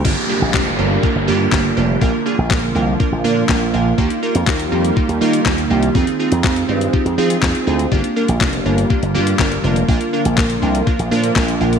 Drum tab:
CC |x---------------|----------------|----------------|----------------|
HH |----------------|----------------|-x-x-x-x-x-x-x-x|-x-x-x-x-x-x-x-x|
CP |----x-------x---|----x-------x---|----x-------x---|----x-------x---|
SD |----o-------o---|----o-------o---|----o-------o---|----o-------o---|
BD |o---o---o---o---|o---o---o---o---|o---o---o---o---|o---o---o---o---|

CC |----------------|----------------|
HH |-x-x-x-x-x-x-x-x|-x-x-x-x-x-x-x-x|
CP |----x-------x---|----x-------x---|
SD |----o-------o---|----o-------o---|
BD |o---o---o---o---|o---o---o---o---|